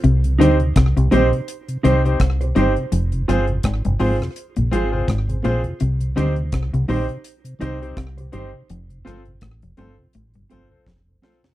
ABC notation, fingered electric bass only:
X:1
M:4/4
L:1/16
Q:"Swing 16ths" 1/4=83
K:Cm
V:1 name="Fingered electric bass" clef=bass
C,,2 D,,2 C,, C,, B,,, z3 C,,2 C,,2 G,,, z | F,,,2 G,,,2 A,,, G,,, A,,, z2 B,,, A,,,2 A,,,2 B,,, z | C,,2 D,,2 C,, C,, B,,, z3 C,,2 C,,2 G,,, z | F,,,2 G,,,2 =A,,, F,,, G,,, z A,,, G,,, G,,, z F,,,2 z2 |]